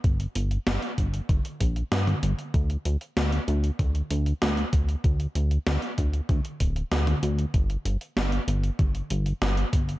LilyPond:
<<
  \new Staff \with { instrumentName = "Analog synth bass" } { \clef bass \time 4/4 \key g \minor \tempo 4 = 96 g,,8 g,,8 g,,8 g,,8 g,,8 bes,,8 g,8 g,,8 | d,8 d,8 d,8 d,8 d,8 d,8 d,8 d,8 | d,8 d,8 d,8 d,8 d,8 d,,8 d,8 d,8 | g,,8 g,,8 g,,8 g,,8 g,,8 g,,8 g,,8 g,,8 | }
  \new DrumStaff \with { instrumentName = "Drums" } \drummode { \time 4/4 <hh bd>16 hh16 hh16 hh16 <hh sn>16 hh16 <hh bd>16 hh16 <hh bd toml>16 hh16 <hh bd>16 hh16 <hh sn>16 <hh toml>16 hh16 hh16 | <hh bd>16 hh16 hh16 hh16 <hh sn>16 hh16 hh16 hh16 <hh bd toml>16 hh16 hh16 hh16 <hh sn>16 hh16 <hh bd>16 hh16 | <hh bd>16 hh16 hh16 hh16 <hh sn>16 hh16 <hh bd>16 hh16 <hh bd toml>16 hh16 <hh bd>16 hh16 <hh sn>16 <hh toml>16 hh16 hh16 | <hh bd>16 hh16 hh16 hh16 <hh sn>16 hh16 hh16 hh16 <hh bd toml>16 hh16 hh16 hh16 <hh sn>16 hh16 <hh bd>16 hh16 | }
>>